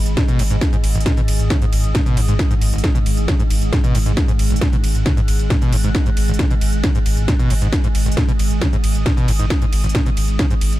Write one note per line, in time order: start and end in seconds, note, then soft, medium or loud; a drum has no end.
0.00 10.79 G#2 medium
0.00 10.79 G#3 medium
0.00 10.79 G#4 medium
0.00 10.79 D#5 medium
0.00 0.16 B5 medium
0.06 0.17 G#1 medium
0.06 closed hi-hat medium
0.13 0.23 A#2 loud
0.13 3.71 D#6 medium
0.13 kick loud
0.13 snare loud
0.13 closed hi-hat medium
0.13 ride medium
0.28 0.41 B2 loud
0.28 closed hi-hat medium
0.39 0.50 G#1 loud
0.39 0.43 G#2 loud
0.39 open hi-hat loud
0.39 ride medium
0.51 0.61 G#1 medium
0.51 0.57 G#2 medium
0.51 closed hi-hat medium
0.61 kick loud
0.61 snare loud
0.61 closed hi-hat medium
0.61 ride medium
0.73 0.76 G#2 loud
0.73 closed hi-hat medium
0.84 0.94 G#1 loud
0.84 open hi-hat loud
0.84 ride medium
0.95 1.06 G#1 medium
0.95 0.99 G#1 medium
0.95 closed hi-hat medium
1.00 closed hi-hat medium
1.06 1.12 A#2 loud
1.06 kick loud
1.06 snare loud
1.06 ride medium
1.17 1.21 B2 loud
1.17 closed hi-hat medium
1.28 1.39 G#1 loud
1.28 open hi-hat loud
1.28 ride medium
1.39 1.50 G#1 medium
1.39 closed hi-hat medium
1.50 1.57 C#3 medium
1.50 kick loud
1.50 snare loud
1.50 closed hi-hat medium
1.50 ride medium
1.62 1.65 G#2 loud
1.62 closed hi-hat medium
1.73 1.83 G#1 loud
1.73 open hi-hat loud
1.73 ride medium
1.84 1.95 G#1 medium
1.84 closed hi-hat medium
1.95 2.01 A#2 loud
1.95 kick loud
1.95 snare loud
1.95 closed hi-hat medium
1.95 ride medium
2.06 2.18 B2 loud
2.06 closed hi-hat medium
2.17 2.28 G#1 medium
2.17 2.21 G#2 loud
2.17 open hi-hat loud
2.17 ride medium
2.28 2.39 G#1 medium
2.28 2.34 G#2 medium
2.28 closed hi-hat medium
2.39 kick loud
2.39 snare loud
2.39 closed hi-hat medium
2.39 ride medium
2.51 2.54 G#2 loud
2.51 closed hi-hat medium
2.61 2.72 G#1 loud
2.61 open hi-hat loud
2.61 ride medium
2.73 2.83 G#1 medium
2.73 2.76 G#1 medium
2.73 closed hi-hat medium
2.78 closed hi-hat medium
2.84 2.90 A#2 loud
2.84 kick loud
2.84 snare loud
2.84 closed hi-hat medium
2.84 ride soft
2.95 2.99 B2 loud
2.95 closed hi-hat medium
3.06 3.17 G#1 loud
3.06 open hi-hat loud
3.06 ride medium
3.17 3.28 G#1 medium
3.17 closed hi-hat medium
3.28 3.34 C#3 medium
3.28 kick loud
3.28 snare loud
3.28 closed hi-hat medium
3.28 ride medium
3.39 3.43 G#2 loud
3.39 closed hi-hat medium
3.50 3.61 G#1 loud
3.50 open hi-hat loud
3.50 ride medium
3.62 3.72 G#1 medium
3.62 closed hi-hat medium
3.69 3.79 A#2 loud
3.69 7.27 F#6 medium
3.69 kick loud
3.69 snare loud
3.69 closed hi-hat medium
3.69 ride medium
3.84 3.96 B2 loud
3.84 closed hi-hat medium
3.95 4.06 G#1 loud
3.95 3.99 G#2 loud
3.95 open hi-hat loud
3.95 ride medium
4.06 4.17 G#1 medium
4.06 4.12 G#2 medium
4.06 closed hi-hat medium
4.17 kick loud
4.17 snare loud
4.17 closed hi-hat medium
4.17 ride medium
4.28 4.32 G#2 loud
4.28 closed hi-hat medium
4.39 4.50 G#1 loud
4.39 open hi-hat loud
4.39 ride medium
4.51 4.54 G#1 medium
4.51 4.61 G#1 medium
4.51 closed hi-hat soft
4.56 closed hi-hat medium
4.61 4.68 A#2 loud
4.61 kick loud
4.61 snare loud
4.61 closed hi-hat medium
4.61 ride medium
4.73 4.76 B2 loud
4.73 closed hi-hat medium
4.84 4.94 G#1 loud
4.84 open hi-hat loud
4.84 ride medium
4.95 5.06 G#1 medium
4.95 closed hi-hat medium
5.06 5.12 C#3 medium
5.06 kick loud
5.06 snare loud
5.06 closed hi-hat medium
5.06 ride medium
5.17 5.21 G#2 loud
5.17 closed hi-hat medium
5.28 5.39 G#1 loud
5.28 open hi-hat loud
5.28 ride medium
5.39 5.50 G#1 medium
5.39 closed hi-hat medium
5.50 5.57 A#2 loud
5.50 kick loud
5.50 snare loud
5.50 closed hi-hat medium
5.50 ride medium
5.62 5.74 B2 loud
5.62 closed hi-hat medium
5.72 5.83 G#1 loud
5.72 5.76 G#2 loud
5.72 open hi-hat loud
5.72 ride medium
5.84 5.94 G#1 medium
5.84 5.90 G#2 medium
5.84 closed hi-hat medium
5.95 kick loud
5.95 snare loud
5.95 closed hi-hat medium
5.95 ride medium
6.06 6.10 G#2 loud
6.06 closed hi-hat soft
6.17 6.28 G#1 loud
6.17 open hi-hat loud
6.17 ride medium
6.28 6.39 G#1 medium
6.28 6.32 G#1 medium
6.28 closed hi-hat soft
6.34 closed hi-hat medium
6.39 6.46 A#2 loud
6.39 kick loud
6.39 snare loud
6.39 closed hi-hat medium
6.39 ride medium
6.50 6.54 B2 loud
6.50 closed hi-hat medium
6.61 6.72 G#1 loud
6.61 open hi-hat loud
6.61 ride medium
6.73 6.83 G#1 medium
6.73 closed hi-hat medium
6.84 6.90 C#3 medium
6.84 kick loud
6.84 snare loud
6.84 closed hi-hat medium
6.84 ride medium
6.95 6.99 G#2 loud
6.95 closed hi-hat medium
7.06 7.17 G#1 loud
7.06 open hi-hat loud
7.06 ride medium
7.17 7.28 G#1 medium
7.17 closed hi-hat soft
7.25 7.34 A#2 loud
7.25 10.79 D#6 medium
7.25 kick loud
7.25 snare loud
7.25 closed hi-hat medium
7.25 ride medium
7.39 7.52 B2 loud
7.39 closed hi-hat medium
7.50 7.61 G#1 loud
7.50 7.54 G#2 loud
7.50 open hi-hat loud
7.50 ride medium
7.62 7.72 G#1 medium
7.62 7.68 G#2 medium
7.62 closed hi-hat medium
7.73 kick loud
7.73 snare loud
7.73 closed hi-hat medium
7.73 ride medium
7.84 7.88 G#2 loud
7.84 closed hi-hat medium
7.95 8.05 G#1 loud
7.95 open hi-hat loud
7.95 ride medium
8.06 8.10 G#1 medium
8.06 8.17 G#1 medium
8.06 closed hi-hat soft
8.12 closed hi-hat medium
8.17 8.23 A#2 loud
8.17 kick loud
8.17 snare loud
8.17 closed hi-hat medium
8.17 ride medium
8.28 8.32 B2 loud
8.28 closed hi-hat soft
8.39 8.50 G#1 loud
8.39 open hi-hat loud
8.39 ride medium
8.51 8.61 G#1 medium
8.51 closed hi-hat soft
8.61 8.68 C#3 medium
8.61 kick loud
8.61 snare loud
8.61 closed hi-hat medium
8.61 ride medium
8.73 8.76 G#2 loud
8.73 closed hi-hat soft
8.84 8.94 G#1 medium
8.84 open hi-hat loud
8.84 ride medium
8.95 9.06 G#1 medium
8.95 closed hi-hat soft
9.06 9.12 A#2 medium
9.06 kick loud
9.06 snare loud
9.06 closed hi-hat medium
9.06 ride medium
9.17 9.30 B2 loud
9.17 closed hi-hat medium
9.28 9.39 G#1 loud
9.28 9.32 G#2 loud
9.28 open hi-hat loud
9.28 ride medium
9.39 9.50 G#1 medium
9.39 9.45 G#2 medium
9.39 closed hi-hat medium
9.50 kick loud
9.50 snare loud
9.50 closed hi-hat medium
9.50 ride medium
9.62 9.65 G#2 loud
9.62 closed hi-hat medium
9.72 9.83 G#1 loud
9.72 open hi-hat loud
9.72 ride medium
9.84 9.95 G#1 medium
9.84 9.88 G#1 medium
9.84 closed hi-hat soft
9.89 closed hi-hat medium
9.95 10.01 A#2 loud
9.95 kick loud
9.95 snare loud
9.95 closed hi-hat medium
9.95 ride medium
10.06 10.10 B2 loud
10.06 closed hi-hat medium
10.17 10.28 G#1 loud
10.17 open hi-hat loud
10.17 ride medium
10.28 10.39 G#1 medium
10.28 closed hi-hat medium
10.39 10.45 C#3 medium
10.39 kick loud
10.39 snare loud
10.39 closed hi-hat medium
10.39 ride medium
10.50 10.54 G#2 loud
10.50 closed hi-hat medium
10.61 10.72 G#1 loud
10.61 open hi-hat loud
10.61 ride medium
10.73 10.79 G#1 medium
10.73 closed hi-hat medium